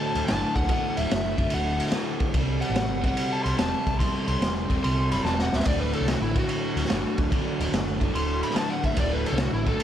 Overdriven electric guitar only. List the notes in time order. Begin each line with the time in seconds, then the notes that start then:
Already playing: D2 A2 D3
0.26 D2 A2 D3
0.68 D2 A2 D3
1.37 D2 A2 D3
1.92 D2 A2 D3
2.33 C3 G3 C4
3.03 C3 G3 C4
3.57 C3 G3 C4
3.99 C3 G3 C4
4.69 C3 G3 C4
5.24 C3 G3 C4
5.66 D2 A2 D3
6.34 D2 A2 D3
6.89 D2 A2 D3
7.31 D2 A2 D3
8.00 D2 A2 D3
8.54 D2 A2 D3
8.95 D2 A2 D3
9.65 D2 A2 D3